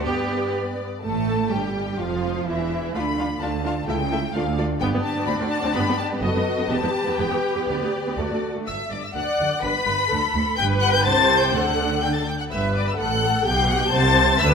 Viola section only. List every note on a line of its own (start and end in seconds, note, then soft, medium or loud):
0.05 0.77 B3 medium
1.04 1.48 A3 medium
1.51 1.99 G3 medium
1.99 2.47 F3 medium
2.46 2.94 E3 medium
2.94 3.02 A3 medium
2.94 3.03 D4 medium
3.18 3.26 A3 medium
3.18 3.26 D4 medium
3.41 3.49 A3 medium
3.41 3.49 D4 medium
3.64 3.72 A3 medium
3.64 3.72 D4 medium
3.87 3.95 A3 medium
3.87 3.95 E4 medium
4.11 4.19 A3 medium
4.11 4.19 E4 medium
4.35 4.43 A3 medium
4.35 4.43 F4 medium
4.58 4.66 A3 medium
4.58 4.66 F4 medium
4.82 4.86 B3 medium
4.82 6.18 D4 medium
4.94 4.98 B3 medium
5.16 5.21 B3 medium
5.28 5.33 C4 medium
5.40 5.45 C4 medium
5.64 5.68 C4 medium
5.76 5.80 B3 medium
5.89 5.93 B3 medium
6.12 6.16 B3 medium
6.23 6.27 B3 medium
6.23 6.70 F#4 medium
6.35 6.39 B3 medium
6.58 6.62 B3 medium
6.69 6.74 B3 medium
6.69 8.18 G4 medium
6.83 6.87 B3 medium
7.07 7.11 B3 medium
7.19 7.24 B3 medium
7.31 7.36 B3 medium
7.56 7.61 B3 medium
7.70 7.74 B3 medium
7.82 7.86 B3 medium
8.06 8.11 B3 medium
8.18 8.23 A3 medium
8.18 8.47 F#4 medium
8.30 8.35 A3 soft
8.55 8.60 A3 medium
9.16 9.61 D5 medium
9.66 10.12 B4 medium
10.12 10.58 A4 medium
10.58 11.04 B4 loud
11.06 11.54 C5 loud
11.54 12.27 A4 medium
12.50 12.95 B4 medium
12.99 13.46 A4 medium
13.46 13.93 G4 medium
13.93 14.40 C5 medium
14.40 14.54 B4 loud